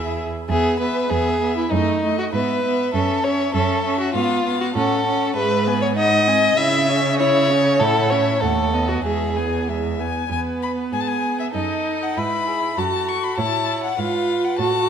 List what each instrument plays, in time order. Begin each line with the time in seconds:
Already playing: cello E2, viola E4, violin G#4 E5
0.49 cello E2, viola B3, violin G#4 E5
0.80 viola B3, violin B4 E5
1.10 cello E2, viola B3, violin G#4 E5
1.41 viola B3, violin E5
1.57 violin E4
1.71 cello F#2, viola A3, violin D#4 D#5
2.03 viola A3, violin D#5
2.19 violin F#4
2.33 cello G#2, viola B3, violin B4 E5
2.64 viola B3, violin E5
2.94 cello F#2, viola C#4, violin A4 E5
3.24 viola C#4, violin C#5 E5
3.54 cello F#2, viola C#4, violin A4 E5
3.85 viola C#4, violin E5
4.00 violin F#4
4.14 cello G#2, viola B3, violin F4 F5
4.45 viola B3, violin F5
4.61 violin F#4
4.74 cello A2, viola C#4, violin A4 F#5
5.06 viola C#4, violin F#5
5.35 cello G#2, viola G#3, violin B4 E5
5.67 viola B3, violin G#5
5.82 violin C#5
5.96 viola D#4, violin D#5 F#5
6.28 viola C4, violin G#5
6.58 cello C#3, viola E4, violin E5
6.88 viola C#4, violin C#5
7.19 viola E4, violin C#5 E5
7.50 viola C#4, violin C#5
7.80 cello A2, viola E4, violin A4 F#5
8.10 viola C#4, violin C#5 E5
8.41 cello D#2, viola A3, violin A4 F#5
8.74 viola B3, violin D#5
8.89 violin F#4
9.04 cello E2, viola G#3, violin G#4 E5
9.36 viola B3, violin G#5
9.68 viola G#3, violin E5
10.00 viola B3, violin G#5
10.30 cello E2, viola B3, violin B4 G#5
10.63 violin B5
10.92 cello G#2, violin G#4 G#5
11.00 violin A5
11.07 violin G#5
11.39 violin E5
11.53 cello F#2, viola D#4, violin A4 D#5
12.02 violin F#5
12.17 cello G#2, viola E4, violin B4 B5
12.47 violin G#4
12.77 cello F#2, viola F#4, violin A4 A5
13.08 violin C#6
13.24 violin B5
13.38 cello A2, viola E4, violin C#5 A5
13.84 violin F#5
13.98 cello G#2, viola F4, violin B4 F5
14.44 violin F#5
14.59 cello A2, viola F#4, violin A4 A5